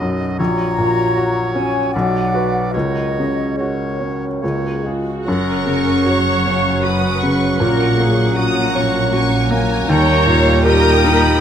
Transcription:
Already playing: B1 F#3 D#4 F#4 D#5
0.00 F#2
0.38 A#1 F#3 F#4 C#5 A#5
0.78 A#2
1.17 F#4
1.54 C#4 G#5
1.92 F#3 F#4 D5 F#5
1.96 B1
2.34 F#4 B4
2.72 C#2 F#3 A#4 C#5 D#5
3.19 C#3
3.57 G#3 F#4 A#4 C#5
3.99 F#3 C#4
4.42 C#2 A#3 F#4 G#4 C#5 D#5
4.55 C#5
4.65 B4
4.74 C#5
4.84 G#3 F4 G#4
5.25 F#1 F#2 F#3 C#4 A#4 F#5 A#5 C#6
5.66 C#3 G#5
6.05 F#4 C#5 F#5 A#5
6.46 C#4 F5
6.83 F#4 B4 F#5 D#6
7.22 C#3 C#6
7.55 B4 A#5
7.60 A#1 A#2 A#4 F#5 C#6
7.98 A#3 G#4
8.36 F#4 A#5 D#6
8.74 C#4 C#6
9.12 F#4 G#5 A#5 C#6
9.51 A#3 G#5
9.88 D#2 D#3 G3 A#3 D#4 C#5 G5 A#5
10.26 A#2 F5
10.63 D#3 D#4 G4 A#4 G5 A#5 D#6
11.04 D#4 B5

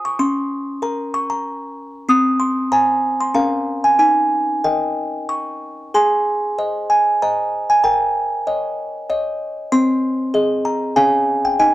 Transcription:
Already playing: C5 G#5
0.05 C#6
0.19 C#4 C6
0.82 A#4 A#5
1.14 C#6
1.30 A#5
2.09 C4 D#6
2.40 C6
2.72 C5 G#5 A#5
3.21 C6
3.34 C#4 A#4 F5 A#5
3.84 G#5
3.99 D#4 G#5
4.64 A#4 D#5 G5
5.29 C#6
5.94 G#4 G#5 C6
6.58 C5 D#5
6.90 G#5
7.22 C5 D#5 A#5
7.70 G#5
7.84 A#4 G5 A#5
8.47 C#5 D#5
9.10 C#5 D#5
9.72 C4 C5 C6
10.34 G#4 D#5
10.65 A#5
10.96 C#4 G#4 C#5 F5 G#5
11.45 G5
11.59 D#4 D#5 G#5

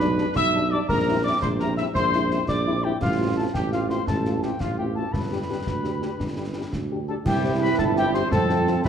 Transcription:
Already playing: B1 B4 B5
0.00 G3 D4, snare
0.18 G3 D4, snare
0.35 B1 E5 E6, concert bass drum, snare
0.54 G3 D4
0.71 G3 D4 D5 D6
0.88 A#1 A#4 A#5, concert bass drum, snare
1.08 G3 C4 E4
1.24 G3 C4 E4 D5 D6
1.41 A#1 C5 C6, concert bass drum, snare
1.59 G3 C4 E4 A#4 A#5, snare
1.77 G3 C4 E4 E5 E6, snare
1.94 A#1 C5 C6, concert bass drum, snare
2.13 G3 C4 E4, snare
2.31 G3 C4 E4, snare
2.48 A#1 D5 D6, concert bass drum, snare
2.67 G3 C4 E4
2.84 G3 C4 E4 G4 G5
3.01 A1 F4 F5, concert bass drum, snare, crash
3.19 A3 C4 F4
3.36 A3 C4 F4 A4 A5
3.54 A1 G4 G5, concert bass drum, snare
3.72 A3 C4 F4 F5, snare
3.89 A3 C4 F4 C5 C6, snare
4.07 A1 A4 A5, concert bass drum, snare
4.25 A3 C4 F4, snare
4.43 A3 C4 F4 G4 G5, snare
4.60 A1 F4 F5, concert bass drum, snare
4.78 A3 C4 F4 G4 G5
4.95 A3 C4 F4 A4 A5
5.13 G1 B4 B5, concert bass drum, snare
5.31 D4 G4
5.49 D4 G4
5.66 D2, concert bass drum, snare
5.83 D4 G4, snare
6.01 D4 G4, snare
6.19 G1, concert bass drum, snare
6.37 D4 G4
6.55 D4 G4
6.72 D2, concert bass drum, snare
6.91 D4 G4
7.08 D4 G4 A4 A5
7.26 C2 E3 C4 E4 G4 G5, concert bass drum, snare, crash
7.44 C4 E4 G4
7.61 C4 E4 G4 B4 B5
7.79 G1 A4 A5, concert bass drum, snare
7.96 C4 E4 G4 G5, snare
8.14 C4 E4 G4 C5 C6, snare
8.31 F2 F3 C4 A4 A5, concert bass drum, snare
8.49 C4 F4, snare
8.67 C4 F4, snare
8.85 C2 A3 B4 B5, concert bass drum, snare

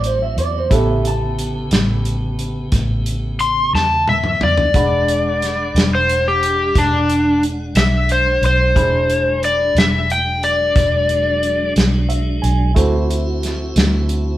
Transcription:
Already playing: A1 F#3 C4 E4 F#4 A4
0.04 C5, closed hi-hat
0.22 E5
0.37 E2 D5, closed hi-hat
0.58 C5
0.70 A1 C#3 B3 E4 G4 A4 E5, kick, closed hi-hat
1.05 A5, closed hi-hat
1.39 closed hi-hat
1.71 A1, snare, closed hi-hat
2.05 closed hi-hat
2.39 closed hi-hat
2.72 A1, kick, snare, closed hi-hat
3.06 closed hi-hat
3.39 C6, closed hi-hat
3.73 E2 A5, snare
4.08 E5, high tom
4.24 mid tom
4.41 E2 D5, mid tom
4.57 floor tom
4.74 E1 G#3 D4 F#5 B5, kick, closed hi-hat
5.08 closed hi-hat
5.42 snare, closed hi-hat
5.75 E1, snare, closed hi-hat
5.95 C5
6.09 closed hi-hat
6.28 G4
6.43 closed hi-hat
6.75 E1 D4, kick, snare, closed hi-hat
7.09 closed hi-hat
7.43 closed hi-hat
7.75 B1 E5, snare, closed hi-hat
8.09 C5, closed hi-hat
8.42 B1, closed hi-hat
8.46 C5
8.74 E1 F#3 G#3 D4 E4 G#4 B5, kick, closed hi-hat
9.10 closed hi-hat
9.43 D5, closed hi-hat
9.75 E1 E5, snare, closed hi-hat
10.10 G5, closed hi-hat
10.43 D5, closed hi-hat
10.76 E1, kick, snare, closed hi-hat
11.09 closed hi-hat
11.43 closed hi-hat
11.76 B1, snare, closed hi-hat
12.09 E5, closed hi-hat
12.42 B1 G#5, closed hi-hat
12.74 D2 C4 E4 F#4 A4 C5, kick, closed hi-hat
13.10 closed hi-hat
13.43 snare, closed hi-hat
13.76 D2, snare, closed hi-hat
14.09 closed hi-hat

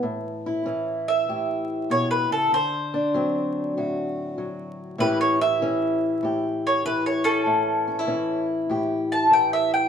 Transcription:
Already playing: E3
0.03 A2
0.46 E4
0.65 E3 C#4
1.08 E5
1.29 A2 G4
1.90 B2 C#5
2.11 B4
2.30 C#3 A4
2.52 D3 C5
2.94 D4
3.14 F#3 C4
3.77 A2 F#4
4.38 F#3
4.98 A2 E3 C#4 E4 G4 B4
5.21 C#5
5.41 E4 E5
5.62 E3 C#4
6.23 A2 G4
6.67 C#5
6.86 E3 B4
7.06 C#5
7.24 C#4 A4
7.46 A2
7.87 C#4
7.99 E4
8.07 E3 C#4
8.70 A2 G4
9.12 A5
9.31 E3 G5
9.53 E5
9.74 G5

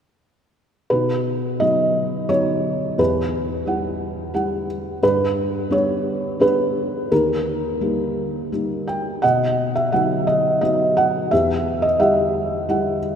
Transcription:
0.90 B2 D#4 B4
1.60 F#3 B3 D#4 D#5
2.29 F#3 B3 D#4 C#5
2.98 E2 G4 B4
3.66 G3 E4 F#5
4.34 G3 E4 F#5
5.03 G2 D4 B4
5.70 G3 B3 D4 C#5
6.40 G3 B3 D4 B4
7.12 D#2 G4 A#4
7.81 G3 A#3 D#4
8.52 G3 A#3 D#4
8.87 G5
9.22 B2 D#5 F#5
9.75 E5
9.92 F#3 B3 D#4 F#5
10.27 D#5
10.61 F#3 B3 D#4 D#5
10.97 F#5
11.31 E2 G4 E5
11.82 D#5
12.00 G3 E4 G4 E5 F#5
12.69 G3 E4 F#5

